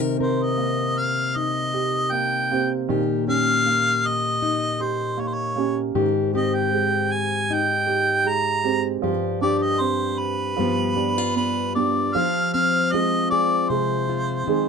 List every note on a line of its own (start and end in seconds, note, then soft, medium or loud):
0.00 2.89 C3 medium
0.00 2.87 D#3 medium
0.00 0.19 A#4 soft
0.17 2.49 C4 medium
0.17 2.85 A#4 soft
0.22 0.44 C5 medium
0.43 1.00 D#5 medium
0.57 2.10 A#3 soft
0.99 1.39 F5 medium
1.36 4.42 D#4 soft
1.36 2.13 D#5 medium
1.74 2.50 G4 medium
2.12 2.49 A#3 soft
2.12 2.69 G5 medium
2.51 2.96 A#3 soft
2.51 2.97 C4 medium
2.51 2.97 G4 medium
2.89 5.91 A#2 medium
2.89 5.94 D#3 medium
2.89 3.28 G4 medium
3.27 5.55 C#4 soft
3.27 5.95 G4 medium
3.27 4.08 F5 medium
3.66 5.16 A#3 soft
4.06 4.83 D#5 medium
4.42 5.91 D#4 soft
4.80 5.56 G4 soft
4.80 5.22 C5 medium
5.17 5.54 A#3 medium
5.17 5.29 C#5 medium
5.28 5.35 C5 medium
5.34 5.77 C#5 medium
5.56 6.02 A#3 medium
5.56 6.02 C#4 medium
5.56 6.03 G4 medium
5.95 8.98 G#2 medium
5.95 9.02 D#3 medium
5.95 6.35 G4 medium
6.33 8.63 C4 soft
6.33 9.02 G4 medium
6.33 6.56 D#5 medium
6.55 7.14 G5 medium
6.71 8.23 G#3 medium
7.12 7.55 G#5 medium
7.50 8.99 D#4 soft
7.50 8.30 G5 medium
7.87 8.63 G4 medium
8.24 8.62 G#3 soft
8.29 8.85 A#5 medium
8.64 9.10 G#3 soft
8.64 9.10 C4 medium
8.64 9.10 G4 medium
9.02 10.57 G2 medium
9.02 10.55 F3 medium
9.02 9.42 G4 medium
9.41 10.65 D4 medium
9.41 13.32 G4 medium
9.41 9.58 D5 medium
9.58 9.64 D5 medium
9.62 9.82 D#5 medium
9.80 10.65 C4 soft
9.80 10.20 C5 medium
10.19 11.36 B4 medium
10.56 12.15 G2 medium
10.56 12.13 F3 medium
10.56 12.10 G3 soft
10.56 12.11 B3 soft
10.56 10.96 F4 soft
10.95 11.18 D4 soft
10.95 11.75 G4 soft
11.18 12.15 F4 soft
11.36 11.75 B3 soft
11.36 11.73 B4 medium
11.75 12.22 B3 soft
11.75 12.22 D4 soft
11.75 12.23 G4 medium
11.75 12.16 D5 medium
12.15 14.69 F3 medium
12.15 12.53 F5 medium
12.53 12.91 C4 soft
12.53 14.69 C4 medium
12.53 12.94 F5 medium
12.92 13.68 G#3 medium
12.92 14.46 C4 soft
12.92 14.08 F4 soft
12.92 13.30 D#5 medium
13.30 14.69 G#4 medium
13.30 13.71 D5 medium
13.69 14.47 C3 medium
13.69 14.46 G#3 soft
13.69 14.69 C5 medium
14.09 14.69 F4 soft
14.47 14.69 D#3 medium
14.47 14.69 G#3 soft
14.47 14.69 C4 soft
14.47 14.69 G#4 medium